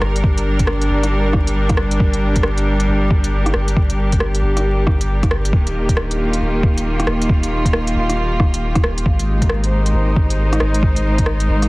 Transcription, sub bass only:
0.02 0.89 G1 loud
0.90 1.99 G1 loud
2.00 2.87 G1 medium
2.88 3.53 G1 loud
3.55 4.42 G1 loud
4.42 5.52 G1 loud
5.53 6.40 D#1 medium
6.41 7.06 D#1 loud
7.07 7.95 D#1 loud
7.95 9.05 D#1 loud
9.05 9.93 G#1 loud
9.94 10.59 G#1 loud
10.61 11.48 G#1 loud
11.49 11.68 G#1 loud

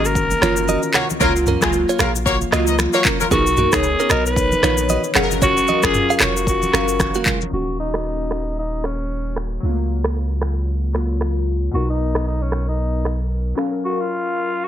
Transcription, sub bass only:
0.00 0.34 G#1 medium
0.42 0.77 F#1 loud
1.21 1.56 C#2 loud
1.62 1.85 C#2 medium
2.00 2.44 A#1 loud
2.52 2.88 C#2 medium
3.31 3.67 B1 loud
3.73 3.95 C#2 medium
4.10 4.55 B1 medium
4.63 4.98 A#1 medium
5.15 5.60 F#1 loud
5.83 6.06 F#1 medium
6.21 6.65 F1 medium
6.73 7.09 F#1 medium
7.52 9.59 D#1 medium
9.63 11.69 C#2 medium
11.73 13.54 B1 medium

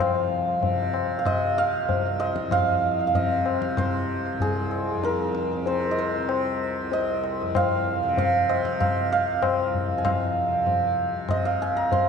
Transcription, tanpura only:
0.00 1.83 C2 medium
0.00 2.47 F2 medium
0.00 0.60 C3 medium
0.60 1.21 C3 medium
1.21 3.09 C3 soft
1.83 4.32 C2 medium
2.47 4.93 F2 medium
3.09 3.71 C3 medium
3.71 5.56 C3 medium
4.33 6.80 C2 medium
4.94 7.41 F2 medium
5.56 6.18 C3 medium
6.18 8.03 C3 medium
6.80 9.26 C2 medium
7.42 9.86 F2 medium
8.03 8.65 C3 medium
8.65 10.48 C3 medium
9.26 11.70 C2 soft
9.86 12.09 F2 medium
10.48 11.09 C3 medium
11.09 12.09 C3 soft
11.71 12.09 C2 medium

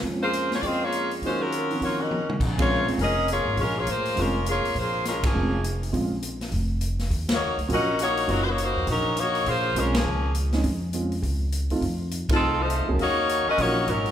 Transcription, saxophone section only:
0.23 0.50 A#3 medium
0.23 0.50 F4 medium
0.23 0.50 G#4 medium
0.23 0.50 C5 medium
0.53 0.61 A#3 medium
0.53 0.61 F4 medium
0.53 0.61 G#4 medium
0.53 0.61 C#5 medium
0.61 0.82 C4 medium
0.61 0.82 G#4 medium
0.61 0.63 D5 medium
0.65 0.83 F4 medium
0.65 0.82 D#5 medium
0.84 1.12 A#3 medium
0.84 1.12 F4 medium
0.84 1.12 G#4 medium
0.84 1.12 C#5 medium
1.26 1.41 G#3 medium
1.26 1.41 C#4 medium
1.26 1.41 F4 medium
1.26 1.41 C5 medium
1.42 1.82 F#3 medium
1.42 1.82 C#4 medium
1.42 1.82 F4 medium
1.42 1.82 A#4 medium
1.83 1.99 A#3 medium
1.83 1.99 F4 medium
1.83 1.99 F#4 medium
1.83 1.99 C#5 medium
2.01 2.30 C#4 medium
2.01 2.30 F#4 medium
2.01 2.29 A#4 medium
2.01 2.30 D#5 medium
2.60 2.87 A#3 medium
2.60 2.86 F4 medium
2.60 2.86 G#4 medium
2.60 2.87 C#5 medium
3.01 3.27 C#4 medium
3.01 3.27 G#4 medium
3.01 3.27 A#4 medium
3.01 3.27 D#5 loud
3.31 3.59 A#3 medium
3.31 3.59 F4 medium
3.31 3.59 G#4 medium
3.31 3.59 C#5 medium
3.60 3.76 G#3 medium
3.60 3.76 C#4 medium
3.60 3.76 F4 medium
3.60 3.76 A#4 medium
3.79 3.88 A#3 medium
3.79 3.88 F4 medium
3.79 3.88 G#4 medium
3.79 3.89 C#5 medium
3.89 4.18 A#3 medium
3.89 4.17 F4 medium
3.89 4.17 G#4 medium
3.89 4.18 C5 medium
4.20 4.47 G#3 medium
4.20 4.48 C#4 medium
4.20 4.48 F4 medium
4.20 4.48 A#4 medium
4.49 4.75 A#3 medium
4.49 4.75 F4 medium
4.49 4.75 G#4 medium
4.49 4.76 C#5 medium
4.78 5.06 A#3 medium
4.78 5.05 F4 medium
4.78 5.06 G#4 medium
4.78 5.06 C5 medium
5.07 5.23 G#3 medium
5.07 5.23 C#4 medium
5.07 5.23 F4 medium
5.07 5.23 A#4 medium
5.26 5.65 F3 medium
5.26 5.65 A#3 medium
5.26 5.65 C#4 medium
5.26 5.65 G#4 medium
7.33 7.59 A#3 medium
7.33 7.59 D#4 medium
7.33 7.58 F#4 medium
7.33 7.59 C#5 medium
7.73 7.99 C#4 medium
7.73 7.99 F#4 medium
7.73 7.98 A#4 medium
7.73 7.99 D#5 medium
8.02 8.28 A#3 medium
8.02 8.28 D#4 medium
8.02 8.28 F#4 medium
8.02 8.28 C#5 medium
8.30 8.43 F#3 medium
8.30 8.43 C#4 medium
8.30 8.43 D#4 medium
8.30 8.43 A#4 loud
8.45 8.48 C5 medium
8.50 8.59 A#3 medium
8.50 8.59 D#4 medium
8.50 8.59 F#4 medium
8.50 8.59 C#5 medium
8.61 8.89 A#3 medium
8.61 8.89 D#4 medium
8.61 8.89 F#4 medium
8.61 8.89 C5 medium
8.89 9.16 F#3 medium
8.89 9.16 C#4 medium
8.89 9.16 D#4 medium
8.89 9.16 A#4 medium
9.19 9.47 A#3 medium
9.19 9.47 D#4 medium
9.19 9.47 F#4 medium
9.19 9.47 C#5 medium
9.48 9.76 A#3 medium
9.48 9.76 F4 medium
9.48 9.77 G#4 medium
9.48 9.77 C5 medium
9.78 9.95 G#3 medium
9.78 9.95 C#4 medium
9.78 9.95 F4 medium
9.78 9.95 A#4 medium
9.95 10.35 F3 medium
9.95 10.35 A#3 medium
9.95 10.35 C#4 medium
9.95 10.35 G#4 medium
12.33 12.59 F3 medium
12.33 12.59 C4 medium
12.33 12.59 D#4 medium
12.33 12.59 A4 medium
12.61 12.89 A3 medium
12.61 12.89 D#4 medium
12.61 12.89 F4 medium
12.61 12.89 C5 medium
13.01 13.45 A#3 medium
13.01 13.45 D#4 medium
13.01 13.45 F#4 medium
13.01 13.45 C#5 loud
13.48 13.59 C#4 medium
13.48 13.59 F#4 medium
13.48 13.59 A#4 medium
13.48 13.59 D#5 loud
13.60 13.89 A#3 medium
13.60 13.89 D#4 medium
13.60 13.89 F#4 medium
13.60 13.89 C#5 medium
13.89 14.11 F#3 medium
13.89 14.11 C#4 medium
13.89 14.11 D#4 medium
13.89 14.11 A#4 medium

